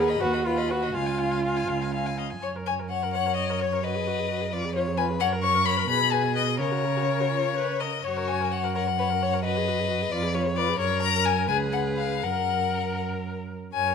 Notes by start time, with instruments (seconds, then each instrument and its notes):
Already playing: cello D#2, violin F#5
0.00 viola G#4, violin B4
0.09 violin D#5 B5
0.21 cello D#2, viola F#4, violin B4 F#5
0.33 violin D#5 B5
0.45 viola F4, violin B4 F#5
0.57 violin D#5 B5
0.69 viola F#4, violin B4 F#5
0.82 violin D#5 B5
0.94 cello C#2, viola F4, violin F5 G#5
1.06 violin F5 G#5
1.19 violin F5 G#5
1.31 violin F5 G#5
1.44 violin F5 G#5
1.57 violin F5 G#5
1.68 cello C#2, violin F5 G#5
1.82 violin F5 G#5
1.94 violin F5 G#5
2.07 violin F5 G#5
2.18 violin D#5 F5
2.30 violin G#5
2.42 cello F#2, violin C#5, viola C#5
2.56 viola A#4
2.66 viola C#5, violin G#5
2.79 viola A#4
2.90 viola C#5, violin F#5
3.03 viola A#4
3.14 violin C#5 F#5, viola C#5
3.26 viola A#4
3.36 viola C#5, violin D#5
3.50 viola A#4
3.60 violin C#5, viola C#5
3.72 viola A#4
3.84 viola F#4, violin B4 D#5
3.95 viola G#4
4.07 viola F#4
4.19 viola G#4
4.30 viola F#4
4.41 viola G#4
4.52 cello F2, viola F4, violin D5
4.64 viola G#4
4.75 viola F4, violin C#5
4.87 viola G#4
4.97 viola F4, violin B4 G#5
5.10 viola G#4
5.20 cello F#2, violin A#4 F#5, viola C#5
5.32 viola A#4
5.43 viola C#5, violin C#6
5.54 viola A#4
5.66 viola C#5, violin B5
5.77 viola A#4
5.88 cello B2, violin G#4 B5, viola B4
6.00 viola G#4
6.11 viola B4, violin G#5
6.23 viola G#4
6.35 viola B4, violin D#5
6.47 viola G#4
6.59 cello C#3, viola A#4, violin A#4 C#5
6.72 viola F#4
6.84 viola A#4
6.97 viola F#4
7.08 viola A#4
7.20 viola F#4
7.32 viola F4
7.56 viola B4
7.80 viola A#4, violin D#5
8.04 cello F#2, violin F#4 C#5, viola C#5
8.17 viola A#4
8.28 viola C#5, violin G#5
8.40 viola A#4
8.52 viola C#5, violin F#5
8.64 viola A#4
8.75 violin A#4 F#5, viola C#5
8.87 viola A#4
8.98 violin B4, viola C#5
9.10 viola A#4
9.22 violin C#5, viola C#5
9.34 viola A#4
9.44 viola F#4, violin B4 D#5
9.57 viola G#4
9.68 viola F#4
9.79 viola G#4
9.90 viola F#4
10.01 viola G#4
10.12 cello F2, viola F4, violin D5
10.23 viola G#4
10.34 viola F4, violin C#5
10.46 viola G#4
10.56 viola F4, violin B4 D5
10.69 viola G#4
10.79 cello F#2, violin A#4 C#5, viola A#4
11.03 violin A#5
11.25 violin G#5
11.48 cello C#2, violin G#4 G#5, viola B4
11.73 violin F#5
11.98 violin F5
12.23 cello F#2, violin A#4 F#5, viola A#4
13.74 cello F#2, viola A#4, violin C#5 G#5